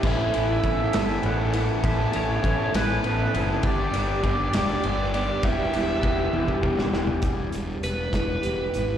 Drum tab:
CC |x-----------|------------|------------|------------|
RD |--x-x-x-x-x-|x-x-x-x-x-x-|x-x-x-x-x-x-|x-x-x-------|
HH |------------|------------|------------|------------|
SD |------o-----|------o-----|------o-----|---------oo-|
T1 |------------|------------|------------|------o-----|
FT |------------|------------|------------|-----------o|
BD |o---o-------|o---o-------|o---o-------|o---o--oo---|

CC |------------|
RD |------------|
HH |x-x-x-x-x-x-|
SD |------o-----|
T1 |------------|
FT |------------|
BD |o-----o-----|